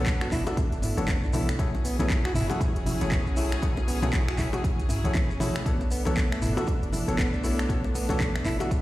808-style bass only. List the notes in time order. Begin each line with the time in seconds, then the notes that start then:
Already playing: B1
0.32 F#1
0.72 F#1
0.97 F#1
1.23 B1
1.59 B1
1.99 B1
2.35 F#1
2.76 F#1
3.01 F#1
3.27 B1
3.63 B1
4.03 B1
4.39 F#1
4.79 B1
5.04 B1
5.29 F#1
5.66 B1
6.06 B1
6.42 F#1
6.83 F#1
7.08 F#1
7.34 B1
7.69 B1
8.10 B1
8.46 F#1